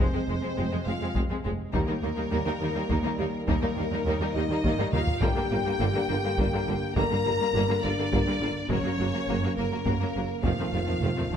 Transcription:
Already playing: C3 G#3
0.00 G#3 C4 C5
0.14 F2 G#3 C4
0.28 F1 F2 G#3 C4
0.43 F2 G#3 C4
0.57 F1 F2 G#3 C4
0.72 F2 G#3 C4
0.86 F1 F2 G#3 C4 F4 F5
1.01 F2 G#3 C4
1.15 F1 F2 G#3 C4, taiko
1.30 F2 G#3 C4
1.45 F1 F2 G#3 C4
1.73 D#2 D#3 G3 A#3 D#4 A#4, taiko
1.87 D#2 D#3 G3 A#3 D#4
2.03 D#2 D#3 G3 A#3 D#4
2.17 D#2 D#3 G3 A#3 D#4
2.31 D#2 D#3 G3 A#3 D#4
2.46 D#2 D#3 G3 A#3 D#4
2.61 D#2 D#3 G3 A#3 D#4
2.75 D#2 D#3 G3 A#3 D#4
2.89 D#2 D#3 G3 A#3 D#4, taiko
3.04 D#2 D#3 G3 A#3 D#4
3.18 D#2 D#3 G3 A#3 D#4
3.46 D#2 D#3 G3 A#3 D#4 A#4, taiko
3.62 D#2 D#3 G3 A#3 D#4
3.76 D#2 D#3 G3 A#3 D#4
3.91 D#2 D#3 G3 A#3 D#4
4.05 D#2 D#3 G3 A#3 D#4
4.20 D#2 D#3 G3 A#3 D#4
4.34 D#2 D#3 G3 A#3 D#4 D#5
4.49 D#2 D#3 G3 A#3 D#4
4.64 D#2 D#3 G3 A#3 D#4, taiko
4.78 D#2 D#3 G3 A#3 D#4, taiko low-mid
4.93 D#2 D#3 G3 A#3 D#4 F4 F5, taiko mid
5.07 taiko low
5.21 G1 G2 D3 G3 A#3 G4 G5, taiko
5.36 G2 D3 G3 A#3
5.51 G1 G2 D3 G3 A#3
5.65 G2 D3 G3 A#3
5.79 G1 G2 D3 G3 A#3
5.94 G2 D3 G3 A#3
6.09 G1 G2 D3 G3 A#3
6.24 G2 D3 G3 A#3
6.38 G1 G2 D3 G3 A#3, taiko
6.53 G2 D3 G3 A#3
6.67 G1 G2 D3 G3 A#3
6.96 G1 G2 D3 G3 A#3 A#4 A#5, taiko
7.10 G2 D3 G3 A#3
7.25 G1 G2 D3 G3 A#3
7.39 G2 D3 G3 A#3
7.54 G1 G2 D3 G3 A#3
7.69 G2 D3 G3 A#3
7.83 G1 G2 D3 G3 A#3 D4 D5
7.98 G2 D3 G3 A#3
8.12 G1 G2 D3 G3 A#3, taiko
8.27 G2 D3 G3 A#3
8.41 G1 G2 D3 G3 A#3
8.69 F#1 F#2 C#3 F#3 A#3 C#4 C#5, taiko
8.84 F#2 F#3 A#3
8.99 F#1 F#2 F#3 A#3
9.13 F#2 F#3 A#3
9.28 F#1 F#2 F#3 A#3
9.43 F#2 F#3 A#3
9.57 F#1 F#2 F#3 A#3 A#4
9.71 F#2 F#3 A#3
9.85 F#1 F#2 F#3 A#3, taiko
10.01 F#2 F#3 A#3
10.15 F#1 F#2 F#3 A#3
10.43 F1 F2 D#3 F3 A3 C4 F4 F5, taiko
10.52 F2
10.59 F2 D#3 F3 A3 C4
10.67 F2
10.73 F1 F2 D#3 F3 A3 C4
10.83 F2 A3 C4
10.88 F2 D#3 F3
10.97 F2
11.01 F1 F2 D#3 F3 A3 C4
11.12 F2
11.17 F2 D#3 F3 A3 C4
11.21 F2
11.27 F1 F2
11.32 F1 F2 D#3 F3 A3 C4

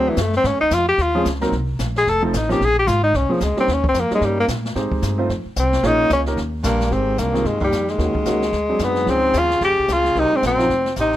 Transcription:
Already playing: D2 F#3 A3 C4 D4 G#4
0.09 E3
0.16 F#2, kick, snare, hi-hat pedal
0.21 A3
0.33 C4, snare
0.44 G#2 C#4, brush sweep, kick, snare
0.53 F2
0.61 C#2 D#4
0.71 F2 F4, kick, snare, hi-hat pedal
0.89 G4
0.98 D#2, brush sweep, kick, snare
1.02 F4
1.15 F3 G#3 C4 C#4 G#4
1.25 C#2, kick, snare, hi-hat pedal
1.34 snare
1.41 F#3 A#3 C4 D#4 A#4, snare
1.43 snare
1.52 C2, brush sweep, kick, snare
1.79 A#1, kick, snare, hi-hat pedal
1.96 G#4, snare
2.06 F1 A4, brush sweep, kick, snare
2.22 F3 A3 C4 D#4 A4
2.33 A1 D#4, kick, snare, hi-hat pedal
2.43 snare
2.49 F3 A#3 C4 C#4 D#4, snare
2.52 G4, snare
2.61 A#1, brush sweep, kick, snare
2.65 G#4
2.79 G4
2.87 G#1 F4, kick, snare, hi-hat pedal
3.04 D#4
3.14 C2 C#4, brush sweep, kick, snare
3.29 F3 A#3 C4 C#4 G#4, muted upright bass stroke
3.40 C#2 G#3, kick, snare, hi-hat pedal
3.57 G3 A#3 C4 C#4 D#4 G4, muted upright bass stroke, snare
3.68 D#2, brush sweep, kick, snare
3.73 C#4
3.84 kick
3.89 C4
3.94 F2, kick, snare, hi-hat pedal
4.00 A#3
4.11 G3 A#3 C#4 D#4 A#4, muted upright bass stroke, snare
4.15 G#3
4.21 G2 G3, brush sweep, kick, snare
4.40 A#3
4.48 A#2, kick, snare, hi-hat pedal
4.65 snare
4.75 G#2 G#3 C4 D#4 G4 C5, brush sweep, kick, snare
4.92 muted upright bass stroke, kick
5.02 G2, kick, snare, hi-hat pedal
5.18 A3 C4 D#4 F4 C5
5.29 F2, brush sweep, kick, snare
5.45 muted upright bass stroke
5.56 C2 C4, kick, snare, hi-hat pedal
5.73 snare
5.83 A#1 A#3 C#4 D#4 F4 G#4 C#5, brush sweep, kick, snare
6.10 C#2 C#4, kick, snare, hi-hat pedal
6.26 A#3 C#4 D#4 G4 A#4, snare
6.37 D#2, brush sweep, kick, snare
6.63 A#1 G2 A#3, kick, snare, hi-hat pedal
6.81 snare
6.91 G#1 G#2 D#3 G#3 C4 G4, brush sweep, kick, snare
7.18 C2 G2 A#3, kick, snare, hi-hat pedal
7.33 D#3 G#3 C4 F4, snare
7.45 D#2 G2 G#3, brush sweep, kick, snare
7.61 D#2 G3, kick
7.72 F2, kick, snare, hi-hat pedal
7.88 D#2 G#3, snare
7.98 D#2 D#3 A#3 C#4 F#4, brush sweep, kick, snare
8.15 muted upright bass stroke, kick
8.25 C#2 D#3 A#3 C#4 F#4, kick, snare, hi-hat pedal
8.42 snare
8.53 D2, brush sweep, kick, snare
8.69 F#3 C4 D4 G#4
8.79 F#2 G#2, kick, snare, hi-hat pedal
8.84 B3
8.96 snare
9.06 C#2 G#2 F3 C4 C#4 G#4, brush sweep, kick, snare
9.33 D#2 C#3, kick, snare, hi-hat pedal
9.39 F4
9.50 snare
9.61 F2 C#3 G4, brush sweep, kick, snare
9.70 C#2
9.79 C2
9.88 C#2 C#3, kick, snare, hi-hat pedal
9.93 F4
10.05 snare
10.15 C2 C3 F#3 C4 D#4 A#4, brush sweep, kick, snare
10.31 G#2, muted upright bass stroke
10.36 C4
10.42 A#1 F#2, kick, snare, hi-hat pedal
10.47 C4
10.59 F3 C4 D#4 F4, snare
10.70 F1, brush sweep, kick, snare
10.86 snare
10.96 A1 C3, kick, snare, hi-hat pedal
11.01 D#4
11.13 snare

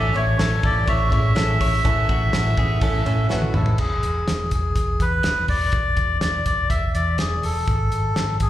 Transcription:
Already playing: A1 A2 E3 A3 C#4 E4 A4 E5
0.13 A1 A2 E3 A3 C#4 E4 C#5, ride
0.38 A1 C#4 E4 A4, snare, ride
0.63 A1 A3 C#4 E4 A4 D5, kick, ride
0.86 A1 E3 A3 C#4 E4 A4 C#5 E5, kick, ride
1.10 A2 A3 C#4 E4 G#4 C#5, kick, ride
1.35 A1 A2 E3 A3 C#4 E4 A4, snare, ride
1.60 A1 A3 C#4 E4 C#5, kick, open hi-hat, ride
1.84 A1 A2 E3 A3 C#4 E4 A4, kick, hi-hat pedal, ride
2.09 A1 A2 E3 A3 C#4 E4 F#4, kick, ride
2.33 A1 C#4 E4 A4, snare, ride
2.57 A1 A3 B3 C#4 E4 G#4, kick, ride
2.81 A1 E3 A3 C#4 E4 A4, kick, ride
3.06 A2 A3 C#4 E4 A4, ride
3.29 A1 A2 E3 A3 C#4 E4 F#4 B4, snare
3.42 high tom
3.53 A1 G#3 A3 C#4 E4 A4, mid tom
3.66 floor tom
3.78 E1 G#4, kick, crash
4.03 E1, closed hi-hat
4.27 E1, snare, closed hi-hat
4.51 E1 G#4, kick, closed hi-hat
4.76 E1, kick, closed hi-hat
5.00 E2 B4, kick, closed hi-hat
5.23 E1, snare, closed hi-hat
5.48 E1 D5, kick, open hi-hat
5.72 E1, kick, closed hi-hat
5.97 E1, kick, closed hi-hat
6.21 E1 D5, snare, closed hi-hat
6.46 E1 D5, kick, closed hi-hat
6.70 E1 E5, kick, closed hi-hat
6.94 E2 D5, closed hi-hat
7.18 E1 G#4, snare, closed hi-hat
7.43 E1 A4, open hi-hat
7.68 G#1, kick, closed hi-hat
7.92 G#1, closed hi-hat
8.16 G#1, snare, closed hi-hat
8.40 G#1 G#4, kick, closed hi-hat

